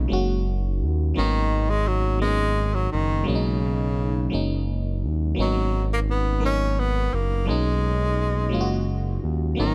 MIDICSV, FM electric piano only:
0, 0, Header, 1, 2, 480
1, 0, Start_track
1, 0, Tempo, 701754
1, 788, Time_signature, 6, 3, 24, 8
1, 6666, End_track
2, 0, Start_track
2, 0, Title_t, "FM electric piano"
2, 0, Program_c, 0, 5
2, 0, Control_c, 0, 64, 127
2, 0, Note_on_c, 0, 54, 89
2, 0, Note_on_c, 0, 56, 79
2, 0, Note_on_c, 0, 58, 81
2, 0, Note_on_c, 0, 61, 76
2, 0, Note_on_c, 0, 63, 102
2, 55, Note_off_c, 0, 54, 0
2, 55, Note_on_c, 0, 54, 78
2, 61, Note_off_c, 0, 56, 0
2, 61, Note_on_c, 0, 56, 74
2, 69, Note_off_c, 0, 58, 0
2, 69, Note_on_c, 0, 58, 77
2, 80, Note_off_c, 0, 61, 0
2, 80, Note_on_c, 0, 61, 80
2, 90, Note_on_c, 0, 66, 94
2, 596, Note_off_c, 0, 54, 0
2, 599, Note_off_c, 0, 56, 0
2, 603, Note_off_c, 0, 58, 0
2, 609, Note_off_c, 0, 61, 0
2, 614, Note_off_c, 0, 66, 0
2, 782, Note_on_c, 0, 54, 83
2, 792, Note_on_c, 0, 58, 78
2, 797, Control_c, 0, 64, 0
2, 799, Note_on_c, 0, 59, 78
2, 804, Note_off_c, 0, 63, 0
2, 807, Note_on_c, 0, 61, 80
2, 816, Note_on_c, 0, 63, 98
2, 925, Control_c, 0, 64, 127
2, 1320, Note_off_c, 0, 54, 0
2, 1325, Note_off_c, 0, 58, 0
2, 1328, Note_off_c, 0, 59, 0
2, 1332, Note_off_c, 0, 61, 0
2, 1337, Note_off_c, 0, 63, 0
2, 1499, Note_on_c, 0, 54, 68
2, 1504, Note_on_c, 0, 58, 60
2, 1516, Note_on_c, 0, 59, 68
2, 1525, Note_on_c, 0, 61, 67
2, 1533, Note_on_c, 0, 63, 75
2, 2038, Note_off_c, 0, 54, 0
2, 2041, Note_off_c, 0, 58, 0
2, 2047, Note_off_c, 0, 59, 0
2, 2051, Note_off_c, 0, 61, 0
2, 2055, Note_off_c, 0, 63, 0
2, 2215, Note_on_c, 0, 54, 88
2, 2223, Note_on_c, 0, 56, 80
2, 2234, Note_on_c, 0, 58, 78
2, 2236, Control_c, 0, 64, 0
2, 2243, Note_on_c, 0, 61, 75
2, 2252, Note_on_c, 0, 62, 75
2, 2284, Note_off_c, 0, 62, 0
2, 2293, Note_on_c, 0, 63, 94
2, 2342, Control_c, 0, 64, 127
2, 2756, Note_off_c, 0, 54, 0
2, 2760, Note_off_c, 0, 56, 0
2, 2765, Note_off_c, 0, 58, 0
2, 2770, Note_off_c, 0, 61, 0
2, 2795, Note_off_c, 0, 63, 0
2, 2940, Note_on_c, 0, 54, 85
2, 2944, Note_on_c, 0, 56, 73
2, 2954, Note_on_c, 0, 58, 76
2, 2963, Note_on_c, 0, 61, 78
2, 2972, Note_on_c, 0, 63, 86
2, 3479, Note_off_c, 0, 54, 0
2, 3481, Note_off_c, 0, 56, 0
2, 3486, Note_off_c, 0, 58, 0
2, 3490, Note_off_c, 0, 61, 0
2, 3494, Note_off_c, 0, 63, 0
2, 3658, Note_on_c, 0, 54, 87
2, 3669, Note_on_c, 0, 58, 80
2, 3676, Control_c, 0, 64, 0
2, 3676, Note_on_c, 0, 59, 77
2, 3687, Note_on_c, 0, 61, 84
2, 3696, Note_on_c, 0, 63, 89
2, 3807, Control_c, 0, 64, 127
2, 4198, Note_off_c, 0, 54, 0
2, 4203, Note_off_c, 0, 58, 0
2, 4206, Note_off_c, 0, 59, 0
2, 4212, Note_off_c, 0, 61, 0
2, 4217, Note_off_c, 0, 63, 0
2, 4378, Note_on_c, 0, 54, 73
2, 4384, Note_on_c, 0, 70, 61
2, 4393, Note_on_c, 0, 59, 61
2, 4407, Note_on_c, 0, 61, 62
2, 4415, Note_on_c, 0, 63, 78
2, 4917, Note_off_c, 0, 54, 0
2, 4921, Note_off_c, 0, 70, 0
2, 4925, Note_off_c, 0, 59, 0
2, 4932, Note_off_c, 0, 61, 0
2, 4936, Note_off_c, 0, 63, 0
2, 5099, Note_on_c, 0, 54, 84
2, 5109, Note_on_c, 0, 56, 78
2, 5114, Note_on_c, 0, 58, 78
2, 5116, Control_c, 0, 64, 0
2, 5124, Note_on_c, 0, 61, 76
2, 5134, Note_on_c, 0, 63, 95
2, 5230, Control_c, 0, 64, 127
2, 5638, Note_off_c, 0, 54, 0
2, 5643, Note_off_c, 0, 56, 0
2, 5646, Note_off_c, 0, 58, 0
2, 5651, Note_off_c, 0, 61, 0
2, 5655, Note_off_c, 0, 63, 0
2, 5809, Note_on_c, 0, 54, 82
2, 5819, Note_on_c, 0, 56, 81
2, 5827, Note_on_c, 0, 58, 74
2, 5834, Note_on_c, 0, 61, 77
2, 5844, Note_on_c, 0, 65, 73
2, 5880, Note_off_c, 0, 65, 0
2, 5887, Note_on_c, 0, 66, 98
2, 6353, Note_off_c, 0, 54, 0
2, 6358, Note_off_c, 0, 56, 0
2, 6362, Note_off_c, 0, 58, 0
2, 6366, Note_off_c, 0, 61, 0
2, 6392, Note_off_c, 0, 66, 0
2, 6532, Note_on_c, 0, 54, 84
2, 6541, Note_on_c, 0, 58, 78
2, 6549, Note_on_c, 0, 59, 79
2, 6557, Control_c, 0, 64, 0
2, 6558, Note_on_c, 0, 61, 79
2, 6565, Note_on_c, 0, 63, 98
2, 6666, Note_off_c, 0, 54, 0
2, 6666, Note_off_c, 0, 58, 0
2, 6666, Note_off_c, 0, 59, 0
2, 6666, Note_off_c, 0, 61, 0
2, 6666, Note_off_c, 0, 63, 0
2, 6666, End_track
0, 0, End_of_file